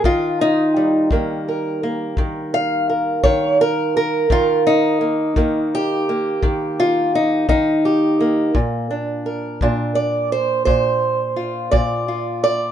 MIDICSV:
0, 0, Header, 1, 3, 480
1, 0, Start_track
1, 0, Tempo, 707547
1, 33, Time_signature, 12, 3, 24, 8
1, 8627, End_track
2, 0, Start_track
2, 0, Title_t, "Steel-string acoustic guitar"
2, 0, Program_c, 0, 25
2, 32, Note_on_c, 0, 51, 73
2, 36, Note_on_c, 0, 65, 92
2, 280, Note_on_c, 0, 63, 88
2, 519, Note_on_c, 0, 55, 46
2, 754, Note_off_c, 0, 65, 0
2, 756, Note_off_c, 0, 51, 0
2, 757, Note_off_c, 0, 63, 0
2, 758, Note_on_c, 0, 51, 67
2, 767, Note_on_c, 0, 58, 44
2, 1008, Note_on_c, 0, 70, 42
2, 1241, Note_off_c, 0, 58, 0
2, 1244, Note_on_c, 0, 58, 49
2, 1477, Note_off_c, 0, 51, 0
2, 1480, Note_on_c, 0, 51, 69
2, 1720, Note_off_c, 0, 70, 0
2, 1723, Note_on_c, 0, 77, 99
2, 1961, Note_off_c, 0, 77, 0
2, 1964, Note_on_c, 0, 70, 41
2, 2192, Note_off_c, 0, 70, 0
2, 2195, Note_off_c, 0, 51, 0
2, 2195, Note_on_c, 0, 73, 91
2, 2203, Note_on_c, 0, 51, 72
2, 2435, Note_off_c, 0, 73, 0
2, 2449, Note_on_c, 0, 70, 84
2, 2683, Note_off_c, 0, 70, 0
2, 2691, Note_on_c, 0, 70, 84
2, 2890, Note_off_c, 0, 55, 0
2, 2891, Note_off_c, 0, 51, 0
2, 2920, Note_on_c, 0, 51, 65
2, 2931, Note_on_c, 0, 65, 94
2, 3163, Note_off_c, 0, 65, 0
2, 3166, Note_on_c, 0, 63, 92
2, 3395, Note_off_c, 0, 58, 0
2, 3398, Note_on_c, 0, 58, 45
2, 3404, Note_off_c, 0, 70, 0
2, 3632, Note_off_c, 0, 51, 0
2, 3640, Note_on_c, 0, 51, 73
2, 3643, Note_off_c, 0, 58, 0
2, 3646, Note_on_c, 0, 58, 50
2, 3899, Note_on_c, 0, 67, 93
2, 4121, Note_off_c, 0, 63, 0
2, 4129, Note_off_c, 0, 58, 0
2, 4132, Note_on_c, 0, 58, 51
2, 4354, Note_off_c, 0, 51, 0
2, 4362, Note_on_c, 0, 51, 70
2, 4610, Note_on_c, 0, 65, 90
2, 4844, Note_off_c, 0, 65, 0
2, 4853, Note_on_c, 0, 63, 85
2, 5073, Note_off_c, 0, 51, 0
2, 5073, Note_off_c, 0, 63, 0
2, 5081, Note_on_c, 0, 51, 75
2, 5082, Note_on_c, 0, 63, 86
2, 5088, Note_off_c, 0, 67, 0
2, 5327, Note_on_c, 0, 67, 52
2, 5563, Note_off_c, 0, 58, 0
2, 5566, Note_on_c, 0, 58, 47
2, 5770, Note_off_c, 0, 51, 0
2, 5798, Note_on_c, 0, 46, 66
2, 5799, Note_off_c, 0, 63, 0
2, 5801, Note_off_c, 0, 67, 0
2, 6039, Note_off_c, 0, 58, 0
2, 6041, Note_on_c, 0, 62, 45
2, 6281, Note_on_c, 0, 70, 48
2, 6524, Note_off_c, 0, 46, 0
2, 6527, Note_off_c, 0, 62, 0
2, 6527, Note_on_c, 0, 46, 75
2, 6530, Note_on_c, 0, 62, 51
2, 6749, Note_off_c, 0, 70, 0
2, 6752, Note_on_c, 0, 74, 82
2, 6994, Note_off_c, 0, 74, 0
2, 7002, Note_on_c, 0, 72, 76
2, 7219, Note_off_c, 0, 72, 0
2, 7227, Note_on_c, 0, 72, 81
2, 7235, Note_off_c, 0, 46, 0
2, 7238, Note_on_c, 0, 46, 70
2, 7709, Note_on_c, 0, 65, 45
2, 7944, Note_off_c, 0, 46, 0
2, 7944, Note_off_c, 0, 72, 0
2, 7947, Note_on_c, 0, 74, 88
2, 7952, Note_on_c, 0, 46, 75
2, 8194, Note_off_c, 0, 65, 0
2, 8197, Note_on_c, 0, 65, 50
2, 8430, Note_off_c, 0, 74, 0
2, 8437, Note_on_c, 0, 74, 88
2, 8627, Note_off_c, 0, 46, 0
2, 8627, Note_off_c, 0, 62, 0
2, 8627, Note_off_c, 0, 65, 0
2, 8627, Note_off_c, 0, 74, 0
2, 8627, End_track
3, 0, Start_track
3, 0, Title_t, "Drums"
3, 29, Note_on_c, 9, 36, 66
3, 97, Note_off_c, 9, 36, 0
3, 751, Note_on_c, 9, 36, 64
3, 818, Note_off_c, 9, 36, 0
3, 1472, Note_on_c, 9, 36, 65
3, 1540, Note_off_c, 9, 36, 0
3, 2195, Note_on_c, 9, 36, 67
3, 2263, Note_off_c, 9, 36, 0
3, 2918, Note_on_c, 9, 36, 65
3, 2985, Note_off_c, 9, 36, 0
3, 3638, Note_on_c, 9, 36, 67
3, 3706, Note_off_c, 9, 36, 0
3, 4359, Note_on_c, 9, 36, 66
3, 4427, Note_off_c, 9, 36, 0
3, 5079, Note_on_c, 9, 36, 70
3, 5147, Note_off_c, 9, 36, 0
3, 5798, Note_on_c, 9, 36, 63
3, 5866, Note_off_c, 9, 36, 0
3, 6519, Note_on_c, 9, 36, 59
3, 6587, Note_off_c, 9, 36, 0
3, 7239, Note_on_c, 9, 36, 64
3, 7306, Note_off_c, 9, 36, 0
3, 7957, Note_on_c, 9, 36, 70
3, 8025, Note_off_c, 9, 36, 0
3, 8627, End_track
0, 0, End_of_file